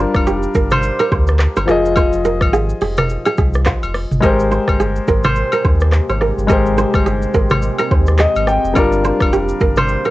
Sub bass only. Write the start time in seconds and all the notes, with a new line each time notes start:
0.15 F1
0.55 G1
1.12 D2
1.56 G1
1.68 F1
2.41 G#1
2.81 F1
3.38 C2
3.83 F1
4.11 G1
4.23 G#1
4.68 G1
5.08 G#1
5.65 D#2
6.09 G#1
6.37 G1
6.49 G#1
6.94 G1
7.34 G#1
7.91 D#2
8.35 G#1
8.64 F1
8.76 G1
9.21 F1
9.61 G1